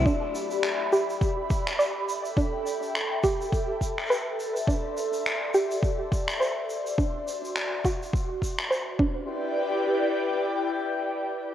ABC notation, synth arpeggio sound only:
X:1
M:4/4
L:1/8
Q:"Swing 16ths" 1/4=104
K:Em
V:1 name="Synth arpeggio sound"
D z2 G z2 d z | D z2 G z2 B z | D z2 G z2 c z | D z2 F z2 c D- |
D z6 z |]